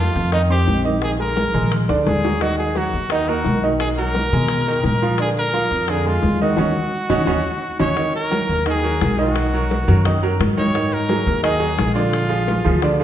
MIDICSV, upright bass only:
0, 0, Header, 1, 2, 480
1, 0, Start_track
1, 0, Key_signature, -6, "minor"
1, 0, Tempo, 347222
1, 1417, Time_signature, 4, 2, 24, 8
1, 18025, End_track
2, 0, Start_track
2, 0, Title_t, "Upright bass"
2, 0, Program_c, 0, 32
2, 210, Note_on_c, 0, 41, 98
2, 883, Note_off_c, 0, 41, 0
2, 935, Note_on_c, 0, 34, 73
2, 2057, Note_off_c, 0, 34, 0
2, 2130, Note_on_c, 0, 34, 86
2, 2580, Note_off_c, 0, 34, 0
2, 2617, Note_on_c, 0, 38, 63
2, 2840, Note_off_c, 0, 38, 0
2, 2853, Note_on_c, 0, 39, 76
2, 3977, Note_off_c, 0, 39, 0
2, 4057, Note_on_c, 0, 39, 84
2, 4728, Note_off_c, 0, 39, 0
2, 4771, Note_on_c, 0, 35, 76
2, 5897, Note_off_c, 0, 35, 0
2, 5978, Note_on_c, 0, 47, 92
2, 6649, Note_off_c, 0, 47, 0
2, 6694, Note_on_c, 0, 46, 78
2, 7819, Note_off_c, 0, 46, 0
2, 7892, Note_on_c, 0, 41, 83
2, 8566, Note_off_c, 0, 41, 0
2, 8612, Note_on_c, 0, 39, 80
2, 9063, Note_off_c, 0, 39, 0
2, 9093, Note_on_c, 0, 39, 89
2, 9276, Note_off_c, 0, 39, 0
2, 9814, Note_on_c, 0, 39, 97
2, 9997, Note_off_c, 0, 39, 0
2, 10058, Note_on_c, 0, 39, 88
2, 10238, Note_off_c, 0, 39, 0
2, 10785, Note_on_c, 0, 39, 81
2, 10962, Note_off_c, 0, 39, 0
2, 11740, Note_on_c, 0, 39, 92
2, 12411, Note_off_c, 0, 39, 0
2, 12464, Note_on_c, 0, 35, 85
2, 13583, Note_off_c, 0, 35, 0
2, 13657, Note_on_c, 0, 42, 99
2, 14328, Note_off_c, 0, 42, 0
2, 14372, Note_on_c, 0, 44, 79
2, 15497, Note_off_c, 0, 44, 0
2, 15573, Note_on_c, 0, 39, 100
2, 16246, Note_off_c, 0, 39, 0
2, 16293, Note_on_c, 0, 34, 83
2, 17417, Note_off_c, 0, 34, 0
2, 17493, Note_on_c, 0, 38, 98
2, 18025, Note_off_c, 0, 38, 0
2, 18025, End_track
0, 0, End_of_file